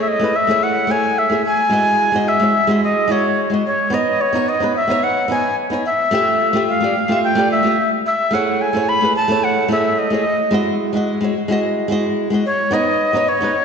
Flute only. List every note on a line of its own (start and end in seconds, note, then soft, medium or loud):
0.01 0.10 E5 medium
0.08 0.37 D#5 medium
0.36 0.65 E5 loud
0.63 0.93 F#5 medium
0.91 1.20 G#5 loud
1.18 1.45 E5 medium
1.46 2.30 G#5 loud
2.28 2.83 E5 loud
2.84 3.13 D#5 medium
3.12 3.53 C#5 medium
3.66 3.95 C#5 medium
3.94 4.23 D#5 medium
4.21 4.50 C#5 medium
4.49 4.75 D#5 medium
4.76 5.05 E5 medium
5.04 5.30 F#5 medium
5.31 5.56 G#5 medium
5.86 6.64 E5 medium
6.69 7.19 F5 medium
7.24 7.49 G5 medium
7.51 7.90 E5 medium
8.06 8.35 E5 medium
8.34 8.63 F#5 medium
8.61 8.90 G#5 medium
8.89 9.16 B5 loud
9.16 9.45 A5 loud
9.44 9.71 F#5 medium
9.72 10.00 E5 medium
9.99 10.53 D#5 medium
12.46 12.75 C#5 medium
12.73 13.30 D#5 medium
13.29 13.65 C#5 medium